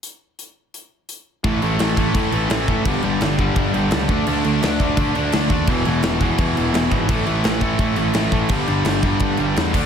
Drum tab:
CC |--------|xxxxxxxx|xxxxxxxx|xxxxxxxx|
HH |x-x-x-x-|--------|--------|--------|
SD |--------|--o---o-|--o---o-|--o---o-|
BD |--------|o--oo--o|o--oo--o|---oo--o|

CC |xxxxxxxx|xxxxxxxx|xxxxxxxx|
HH |--------|--------|--------|
SD |--o---o-|--o---o-|--o---o-|
BD |o--oo--o|o--oo--o|o--oo--o|